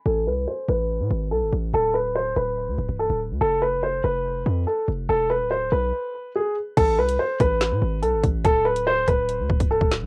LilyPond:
<<
  \new Staff \with { instrumentName = "Grand piano" } { \time 4/4 \key a \minor \tempo 4 = 143 a'8 b'8 c''8 b'4. a'8 r8 | a'8 b'8 c''8 b'4. a'8 r8 | a'8 b'8 c''8 b'4. a'8 r8 | a'8 b'8 c''8 b'4. gis'8 r8 |
a'8 b'8 c''8 b'4. a'8 r8 | a'8 b'8 c''8 b'4. a'8 r8 | }
  \new Staff \with { instrumentName = "808-style bass" } { \clef bass \time 4/4 \key a \minor a,,8 c,8 r8 a,,8. a,16 gis,,8 b,,16 gis,,16 a,,8 | d,,4. d,,8. d,16 d,,16 c,,8 d,,8 d,16 | f,,4. f,,4 f,8 r8 f,,8 | e,,8. d,,8. b,,8 r2 |
a,,8 c,8 r8 a,,8. a,16 gis,,8 b,,16 gis,,16 a,,8 | d,,4. d,,8. d,16 d,,16 c,,8 d,,8 d,16 | }
  \new DrumStaff \with { instrumentName = "Drums" } \drummode { \time 4/4 r4 r4 r4 r4 | r4 r4 r4 r4 | r4 r4 r4 r4 | r4 r4 r4 r4 |
<cymc hh bd>8. hh16 r8 <hh bd>8 <hc hh sn>4 hh8 <hh bd>8 | <hh bd>8. hh16 r8 <hh bd>8 hh8 bd16 <hh bd>16 r16 bd16 <hc hh sn>8 | }
>>